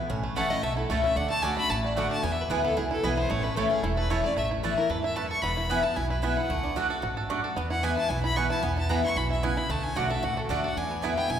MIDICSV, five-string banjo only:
0, 0, Header, 1, 2, 480
1, 0, Start_track
1, 0, Key_signature, 3, "major"
1, 0, Tempo, 266667
1, 184, Time_signature, 4, 2, 24, 8
1, 20513, End_track
2, 0, Start_track
2, 0, Title_t, "Five-string banjo"
2, 0, Program_c, 0, 105
2, 175, Note_on_c, 0, 61, 65
2, 422, Note_on_c, 0, 57, 58
2, 657, Note_on_c, 0, 69, 67
2, 861, Note_off_c, 0, 61, 0
2, 884, Note_off_c, 0, 57, 0
2, 905, Note_on_c, 0, 57, 79
2, 1114, Note_off_c, 0, 69, 0
2, 1136, Note_on_c, 0, 69, 66
2, 1381, Note_on_c, 0, 64, 61
2, 1574, Note_off_c, 0, 57, 0
2, 1617, Note_on_c, 0, 57, 76
2, 1821, Note_off_c, 0, 69, 0
2, 1868, Note_on_c, 0, 61, 62
2, 2052, Note_off_c, 0, 64, 0
2, 2081, Note_off_c, 0, 61, 0
2, 2088, Note_on_c, 0, 62, 62
2, 2101, Note_off_c, 0, 57, 0
2, 2343, Note_on_c, 0, 57, 65
2, 2568, Note_on_c, 0, 69, 65
2, 2778, Note_off_c, 0, 62, 0
2, 2803, Note_off_c, 0, 57, 0
2, 2825, Note_on_c, 0, 57, 79
2, 3039, Note_off_c, 0, 69, 0
2, 3061, Note_on_c, 0, 69, 67
2, 3320, Note_on_c, 0, 66, 59
2, 3494, Note_off_c, 0, 57, 0
2, 3554, Note_on_c, 0, 57, 79
2, 3744, Note_off_c, 0, 69, 0
2, 3796, Note_on_c, 0, 62, 70
2, 3982, Note_off_c, 0, 66, 0
2, 4022, Note_off_c, 0, 57, 0
2, 4026, Note_off_c, 0, 62, 0
2, 4029, Note_on_c, 0, 59, 75
2, 4510, Note_on_c, 0, 64, 71
2, 4708, Note_off_c, 0, 59, 0
2, 4760, Note_on_c, 0, 59, 79
2, 4981, Note_off_c, 0, 64, 0
2, 4988, Note_on_c, 0, 64, 70
2, 5227, Note_off_c, 0, 64, 0
2, 5234, Note_on_c, 0, 64, 60
2, 5422, Note_off_c, 0, 59, 0
2, 5464, Note_off_c, 0, 64, 0
2, 5464, Note_on_c, 0, 64, 63
2, 5710, Note_on_c, 0, 59, 71
2, 5943, Note_off_c, 0, 59, 0
2, 5954, Note_on_c, 0, 57, 83
2, 6197, Note_off_c, 0, 64, 0
2, 6197, Note_on_c, 0, 64, 65
2, 6432, Note_on_c, 0, 69, 64
2, 6630, Note_off_c, 0, 57, 0
2, 6675, Note_on_c, 0, 61, 66
2, 6860, Note_off_c, 0, 64, 0
2, 6902, Note_on_c, 0, 64, 65
2, 7109, Note_off_c, 0, 69, 0
2, 7151, Note_on_c, 0, 69, 62
2, 7339, Note_off_c, 0, 61, 0
2, 7360, Note_off_c, 0, 64, 0
2, 7381, Note_on_c, 0, 64, 67
2, 7629, Note_on_c, 0, 57, 68
2, 7817, Note_off_c, 0, 69, 0
2, 7838, Note_off_c, 0, 57, 0
2, 7860, Note_on_c, 0, 57, 78
2, 7863, Note_off_c, 0, 64, 0
2, 8119, Note_on_c, 0, 64, 57
2, 8341, Note_on_c, 0, 52, 63
2, 8543, Note_off_c, 0, 57, 0
2, 8575, Note_off_c, 0, 64, 0
2, 8597, Note_on_c, 0, 64, 60
2, 8819, Note_on_c, 0, 69, 61
2, 9024, Note_off_c, 0, 52, 0
2, 9052, Note_off_c, 0, 64, 0
2, 9073, Note_on_c, 0, 64, 60
2, 9281, Note_off_c, 0, 64, 0
2, 9302, Note_on_c, 0, 64, 67
2, 9503, Note_off_c, 0, 69, 0
2, 9555, Note_on_c, 0, 69, 64
2, 9783, Note_on_c, 0, 59, 75
2, 9784, Note_off_c, 0, 64, 0
2, 9785, Note_off_c, 0, 69, 0
2, 10026, Note_on_c, 0, 64, 60
2, 10231, Note_off_c, 0, 64, 0
2, 10253, Note_on_c, 0, 64, 66
2, 10465, Note_off_c, 0, 59, 0
2, 10486, Note_off_c, 0, 64, 0
2, 10507, Note_on_c, 0, 64, 62
2, 10716, Note_off_c, 0, 64, 0
2, 10738, Note_on_c, 0, 64, 59
2, 10964, Note_off_c, 0, 64, 0
2, 10985, Note_on_c, 0, 64, 60
2, 11188, Note_off_c, 0, 64, 0
2, 11209, Note_on_c, 0, 64, 64
2, 11445, Note_off_c, 0, 64, 0
2, 11466, Note_on_c, 0, 64, 63
2, 11697, Note_on_c, 0, 57, 74
2, 11701, Note_off_c, 0, 64, 0
2, 11945, Note_on_c, 0, 62, 62
2, 12171, Note_on_c, 0, 66, 69
2, 12382, Note_off_c, 0, 57, 0
2, 12423, Note_on_c, 0, 69, 66
2, 12614, Note_off_c, 0, 62, 0
2, 12634, Note_off_c, 0, 66, 0
2, 12655, Note_on_c, 0, 66, 65
2, 12884, Note_off_c, 0, 69, 0
2, 12906, Note_on_c, 0, 69, 62
2, 13137, Note_on_c, 0, 62, 65
2, 13341, Note_off_c, 0, 66, 0
2, 13370, Note_off_c, 0, 69, 0
2, 13392, Note_on_c, 0, 69, 65
2, 13616, Note_on_c, 0, 59, 80
2, 13622, Note_off_c, 0, 62, 0
2, 13624, Note_off_c, 0, 69, 0
2, 13866, Note_on_c, 0, 64, 62
2, 14099, Note_on_c, 0, 52, 65
2, 14302, Note_off_c, 0, 59, 0
2, 14328, Note_off_c, 0, 64, 0
2, 14350, Note_on_c, 0, 64, 63
2, 14559, Note_off_c, 0, 64, 0
2, 14581, Note_on_c, 0, 64, 70
2, 14783, Note_off_c, 0, 52, 0
2, 14807, Note_off_c, 0, 64, 0
2, 14829, Note_on_c, 0, 64, 64
2, 15042, Note_off_c, 0, 64, 0
2, 15064, Note_on_c, 0, 64, 65
2, 15282, Note_off_c, 0, 64, 0
2, 15304, Note_on_c, 0, 64, 63
2, 15543, Note_on_c, 0, 59, 72
2, 15771, Note_off_c, 0, 64, 0
2, 15793, Note_on_c, 0, 64, 60
2, 16027, Note_on_c, 0, 52, 62
2, 16225, Note_off_c, 0, 59, 0
2, 16257, Note_off_c, 0, 64, 0
2, 16279, Note_on_c, 0, 64, 60
2, 16478, Note_off_c, 0, 64, 0
2, 16500, Note_on_c, 0, 64, 64
2, 16706, Note_off_c, 0, 52, 0
2, 16726, Note_off_c, 0, 64, 0
2, 16747, Note_on_c, 0, 64, 64
2, 16964, Note_off_c, 0, 64, 0
2, 16985, Note_on_c, 0, 64, 64
2, 17207, Note_off_c, 0, 64, 0
2, 17228, Note_on_c, 0, 64, 65
2, 17453, Note_on_c, 0, 57, 75
2, 17462, Note_off_c, 0, 64, 0
2, 17936, Note_on_c, 0, 66, 69
2, 18139, Note_off_c, 0, 57, 0
2, 18187, Note_on_c, 0, 69, 66
2, 18403, Note_off_c, 0, 66, 0
2, 18425, Note_on_c, 0, 66, 63
2, 18645, Note_off_c, 0, 69, 0
2, 18666, Note_on_c, 0, 69, 61
2, 18906, Note_on_c, 0, 62, 67
2, 19105, Note_off_c, 0, 66, 0
2, 19131, Note_off_c, 0, 69, 0
2, 19153, Note_on_c, 0, 69, 65
2, 19365, Note_off_c, 0, 62, 0
2, 19383, Note_off_c, 0, 69, 0
2, 19387, Note_on_c, 0, 62, 66
2, 19633, Note_on_c, 0, 59, 59
2, 19870, Note_on_c, 0, 64, 67
2, 20066, Note_off_c, 0, 62, 0
2, 20092, Note_off_c, 0, 59, 0
2, 20114, Note_on_c, 0, 59, 81
2, 20343, Note_off_c, 0, 64, 0
2, 20350, Note_on_c, 0, 64, 63
2, 20513, Note_off_c, 0, 59, 0
2, 20513, Note_off_c, 0, 64, 0
2, 20513, End_track
0, 0, End_of_file